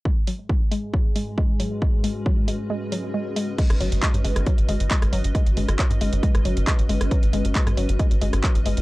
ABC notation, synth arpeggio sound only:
X:1
M:4/4
L:1/8
Q:1/4=136
K:G#m
V:1 name="Synth arpeggio sound" clef=bass
G, F, G, G, F, G, G, F, | G, G, F, G, G, F, G, G, | G, F, G, G, F, G, G, F, | G, G, F, G, G, F, G, G, |
F, G, G, F, G, G, F, G, |]